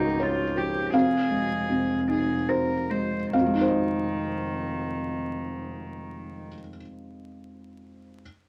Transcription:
Already playing: felt piano C#2 G#2 F3 D#4 C#5 G5, double bass C#2, cello D#4
0.20 cello F4, felt piano C#5
0.56 felt piano F3, cello G4
0.92 double bass F1, felt piano F2 F5, cello G#4
1.30 felt piano G#3
1.69 felt piano C3
2.08 felt piano D#4, cello G#4
2.49 cello A#4, felt piano C5
2.90 felt piano G#3, cello C5
3.32 double bass F1, felt piano F2 F5, cello D#3
3.40 felt piano F3
3.46 felt piano G#3
3.54 felt piano D#4
3.61 felt piano C5
3.68 felt piano D#5

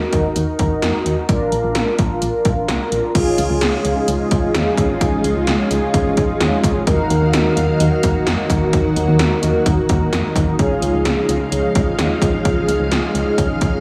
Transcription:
Already playing: analog polysynth D#4 F#4 A#4
0.13 fm bass D#2, kick, closed hi-hat
0.36 fm bass D#2, closed hi-hat
0.59 fm bass D#2, kick, closed hi-hat
0.82 fm bass F2, snare, closed hi-hat
1.06 fm bass D#2, closed hi-hat
1.29 fm bass A#1, analog polysynth D4 F4 A#4, kick, closed hi-hat
1.52 fm bass A#1, closed hi-hat
1.64 fm bass A#1
1.75 fm bass A#1, snare, closed hi-hat
1.99 fm bass A#1, kick, closed hi-hat
2.22 fm bass A#1, closed hi-hat
2.45 fm bass A#1, kick, closed hi-hat
2.68 fm bass C2, snare, closed hi-hat
2.92 fm bass A#1, closed hi-hat
3.15 fm bass C#2, string machine C#3 F3 G#3 D#4 F4, analog polysynth C#4 F4 G#4, kick, closed hi-hat, crash
3.38 fm bass C#2, closed hi-hat
3.50 fm bass C#2
3.61 fm bass C#2, snare, closed hi-hat
3.85 fm bass C#2, closed hi-hat
4.08 fm bass C#2, closed hi-hat
4.31 fm bass C#2, kick, closed hi-hat
4.54 fm bass D#2, snare, closed hi-hat
4.77 fm bass C#2, kick, closed hi-hat
5.01 fm bass C#2, kick, closed hi-hat
5.24 fm bass C#2, closed hi-hat
5.36 fm bass C#2
5.47 fm bass C#2, snare, closed hi-hat
5.71 fm bass C#2, closed hi-hat
5.94 fm bass C#2, kick, closed hi-hat
6.17 fm bass C#2, kick, closed hi-hat
6.40 fm bass D#2, snare, closed hi-hat
6.64 fm bass C#2, kick, closed hi-hat
6.87 fm bass D#2, string machine D#3 F#3 A#3 F#4 F5, analog polysynth D#4 F#4 A#4, kick, closed hi-hat
7.10 fm bass D#2, closed hi-hat
7.22 fm bass D#2
7.33 fm bass D#2, snare, closed hi-hat
7.57 fm bass D#2, closed hi-hat
7.80 fm bass D#2, closed hi-hat
8.03 fm bass D#2, kick, closed hi-hat
8.27 fm bass F2, snare, closed hi-hat
8.50 fm bass D#2, kick, closed hi-hat
8.73 fm bass D#2, string machine D#4, kick, closed hi-hat
8.96 fm bass D#2, closed hi-hat
9.08 fm bass D#2
9.19 fm bass D#2, snare, closed hi-hat
9.43 fm bass D#2, closed hi-hat
9.66 fm bass D#2, kick, closed hi-hat
9.89 fm bass D#2, kick, closed hi-hat
10.13 fm bass F2, snare, closed hi-hat
10.36 fm bass D#2, kick, closed hi-hat
10.59 fm bass C#2, string machine C#3 F3 G#3 F5, analog polysynth C#4 F4 G#4, kick, closed hi-hat
10.82 fm bass C#2, closed hi-hat
10.94 fm bass C#2
11.05 fm bass C#2, snare, closed hi-hat
11.29 fm bass C#2, closed hi-hat
11.52 fm bass C#2, closed hi-hat
11.75 fm bass C#2, kick, closed hi-hat
11.99 fm bass D#2, snare, closed hi-hat
12.22 fm bass C#2, kick, closed hi-hat
12.45 fm bass C#2, kick, closed hi-hat
12.68 fm bass C#2, closed hi-hat
12.80 fm bass C#2
12.91 fm bass C#2, snare, closed hi-hat
13.15 fm bass C#2, closed hi-hat
13.38 fm bass C#2, kick, closed hi-hat
13.61 fm bass C#2, kick, closed hi-hat

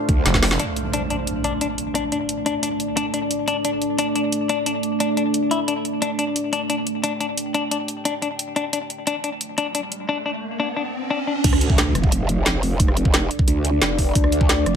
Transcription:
Already playing: ambient pad A3 D4 C5 F5
0.09 wobble bass D2, kick, closed hi-hat
0.26 wobble bass F1, snare, closed hi-hat
0.34 kick, snare
0.43 snare, open hi-hat
0.51 snare
0.59 ambient pad A3 D4 D5 A5, clean electric guitar D4, closed hi-hat, impact
0.76 closed hi-hat
0.93 clean electric guitar D4, closed hi-hat
1.10 clean electric guitar D4, closed hi-hat
1.27 closed hi-hat
1.44 clean electric guitar D4, closed hi-hat
1.61 clean electric guitar D4, closed hi-hat
1.78 closed hi-hat
1.95 clean electric guitar D4, closed hi-hat
2.12 clean electric guitar D4, closed hi-hat
2.29 closed hi-hat
2.46 clean electric guitar D4, closed hi-hat
2.63 clean electric guitar D4, closed hi-hat
2.80 closed hi-hat
2.97 clean electric guitar D4, closed hi-hat
3.14 clean electric guitar D4, closed hi-hat
3.31 closed hi-hat
3.48 clean electric guitar D4, closed hi-hat
3.65 clean electric guitar D4, closed hi-hat
3.82 closed hi-hat
3.99 clean electric guitar D4, closed hi-hat
4.16 clean electric guitar D4, closed hi-hat
4.32 closed hi-hat
4.49 clean electric guitar D4, closed hi-hat
4.66 clean electric guitar D4, closed hi-hat
4.83 closed hi-hat
5.00 clean electric guitar D4, closed hi-hat
5.17 clean electric guitar D4, closed hi-hat
5.34 closed hi-hat
5.51 clean electric guitar E4, closed hi-hat
5.68 clean electric guitar D4, closed hi-hat
5.85 closed hi-hat
6.02 clean electric guitar D4, ambient pad G5, closed hi-hat
6.19 clean electric guitar D4, closed hi-hat
6.36 closed hi-hat
6.53 clean electric guitar D4, closed hi-hat
6.70 clean electric guitar D4, closed hi-hat
6.87 closed hi-hat
7.03 clean electric guitar D4, closed hi-hat
7.20 clean electric guitar D4, closed hi-hat
7.38 closed hi-hat
7.54 clean electric guitar D4, closed hi-hat
7.71 clean electric guitar D4, closed hi-hat
7.88 closed hi-hat
8.05 clean electric guitar D4, closed hi-hat
8.22 clean electric guitar D4, closed hi-hat
8.39 closed hi-hat
8.56 clean electric guitar D4, closed hi-hat
8.73 clean electric guitar D4, closed hi-hat, riser
8.90 closed hi-hat
9.07 clean electric guitar D4, closed hi-hat
9.24 clean electric guitar D4, closed hi-hat
9.41 closed hi-hat
9.58 clean electric guitar D4, closed hi-hat
9.75 clean electric guitar D4, closed hi-hat
9.92 closed hi-hat
10.09 clean electric guitar D4
10.26 clean electric guitar D4
10.60 clean electric guitar D4
10.76 clean electric guitar D4
11.10 clean electric guitar D4
11.27 clean electric guitar D4
11.44 wobble bass D2, ambient pad D4 A4 D5, kick, closed hi-hat, crash, impact
11.53 cross-stick
11.61 closed hi-hat
11.70 kick
11.78 snare, closed hi-hat
11.95 wobble bass F1, cross-stick, closed hi-hat
12.04 kick
12.12 closed hi-hat
12.29 closed hi-hat
12.46 snare, closed hi-hat
12.63 open hi-hat
12.80 kick, closed hi-hat
12.88 cross-stick
12.97 closed hi-hat
13.05 kick
13.14 snare, closed hi-hat
13.31 closed hi-hat
13.39 kick
13.48 wobble bass D2, closed hi-hat
13.65 closed hi-hat
13.82 wobble bass F1, snare, closed hi-hat
13.98 kick, open hi-hat
14.15 wobble bass D2, kick, closed hi-hat
14.24 cross-stick
14.32 closed hi-hat
14.41 kick
14.49 snare, closed hi-hat
14.66 wobble bass F1, cross-stick, closed hi-hat

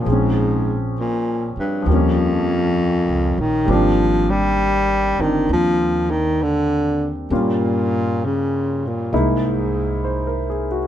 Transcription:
Already playing: baritone saxophone A#2
0.01 grand piano F3 G#4
0.06 upright bass A#1, grand piano C4
0.10 baritone saxophone G#2, grand piano C#4
0.99 baritone saxophone A#2
1.57 baritone saxophone G2, muted upright bass stroke
1.82 upright bass D#2, grand piano F3 G3
1.89 baritone saxophone F2, grand piano A#3
1.93 grand piano C#4
3.08 upright bass C#2
3.38 upright bass A#1, baritone saxophone D#3
3.65 upright bass G#1, grand piano G3 A#3 C4
3.70 baritone saxophone F3, grand piano D4
4.30 baritone saxophone G3
5.18 upright bass G1, baritone saxophone D#3, grand piano C4 D4
5.49 upright bass D#2, baritone saxophone F3
6.10 baritone saxophone D#3
6.42 baritone saxophone D3
7.30 upright bass G2, baritone saxophone A#2, grand piano G3 A#3 C#4 F4
8.25 baritone saxophone C#3
8.86 baritone saxophone A#2
9.13 upright bass C2, grand piano G#3 A#3 D#4 E4
9.18 baritone saxophone G#2
10.04 grand piano C5
10.27 grand piano A#4
10.50 grand piano G#4
10.72 grand piano F#4

